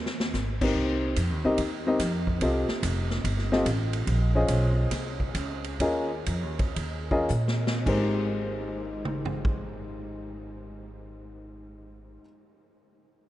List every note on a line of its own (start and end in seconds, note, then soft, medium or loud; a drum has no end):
0.00 0.33 D#2 medium
0.06 snare medium
0.20 snare medium
0.34 0.74 G#1 medium
0.34 snare medium
0.34 hi-hat pedal medium
0.61 1.14 C4 medium
0.61 1.14 D#4 medium
0.61 1.15 G4 medium
0.61 1.15 A#4 medium
0.61 1.15 C5 medium
0.61 kick medium
0.61 crash medium
0.75 1.16 C2 medium
0.75 kick soft
1.16 1.31 F2 medium
1.16 kick soft
1.16 hi-hat pedal medium
1.16 ride medium
1.31 1.44 D#2 medium
1.45 1.57 C2 medium
1.45 1.57 C4 medium
1.45 1.57 D#4 medium
1.45 1.57 G4 medium
1.45 1.58 A#4 medium
1.45 1.57 D#5 medium
1.58 1.99 D#2 medium
1.58 kick soft
1.58 ride medium
1.87 1.99 C4 medium
1.87 1.99 D#4 medium
1.87 1.99 G4 medium
1.87 1.99 A#4 medium
1.87 1.99 D#5 medium
1.99 2.40 F2 loud
1.99 kick soft
1.99 snare soft
1.99 hi-hat pedal medium
1.99 ride medium
2.27 kick medium
2.41 2.67 C2 medium
2.41 2.67 C4 medium
2.41 2.67 F4 medium
2.41 2.67 G4 medium
2.41 2.67 A4 medium
2.41 2.67 D#5 medium
2.41 kick soft
2.41 ride medium
2.68 snare medium
2.83 3.23 F1 loud
2.83 kick soft
2.83 hi-hat pedal medium
2.83 ride medium
3.10 snare medium
3.24 3.65 G1 medium
3.24 kick soft
3.24 ride medium
3.39 snare soft
3.52 3.65 C4 medium
3.52 3.65 F4 medium
3.52 3.65 G4 medium
3.52 3.65 A4 medium
3.52 3.65 D#5 medium
3.52 snare soft
3.66 4.06 A1 loud
3.66 kick soft
3.66 hi-hat pedal medium
3.66 ride medium
3.93 ride medium
4.07 4.48 A#1 medium
4.07 kick soft
4.07 ride medium
4.35 4.89 C#4 medium
4.35 4.89 F4 medium
4.35 4.89 G#4 medium
4.35 4.89 C5 medium
4.35 4.89 D#5 medium
4.48 4.90 B1 medium
4.48 kick soft
4.48 hi-hat pedal medium
4.48 ride medium
4.91 5.34 C2 medium
4.91 kick soft
4.91 snare soft
4.91 ride medium
5.20 kick medium
5.35 5.79 C#2 loud
5.35 kick soft
5.35 hi-hat pedal medium
5.35 ride medium
5.64 ride medium
5.79 6.26 D#2 medium
5.79 6.08 C#4 medium
5.79 6.09 F4 medium
5.79 6.09 G#4 medium
5.79 6.09 A#4 medium
5.79 6.09 D#5 medium
5.79 kick soft
5.79 ride medium
6.26 6.43 F2 loud
6.26 kick soft
6.26 hi-hat pedal medium
6.26 ride medium
6.43 6.59 D#2 medium
6.59 6.76 C#2 medium
6.59 kick medium
6.59 ride medium
6.76 7.28 D#2 medium
6.76 kick soft
6.76 ride medium
7.11 7.28 C#4 medium
7.11 7.28 F4 medium
7.11 7.28 G#4 medium
7.11 7.28 A#4 medium
7.11 7.28 D#5 medium
7.11 kick medium
7.29 7.85 A#2 medium
7.29 hi-hat pedal medium
7.48 snare medium
7.67 snare medium
7.86 12.16 G#1 loud
7.86 12.20 G#2 medium
7.86 12.20 G#3 medium
7.86 12.21 G4 medium
7.86 12.22 A#4 medium
7.86 12.23 C5 medium
7.86 kick medium
7.86 crash medium
9.05 mid tom medium
9.25 floor tom medium
9.45 kick medium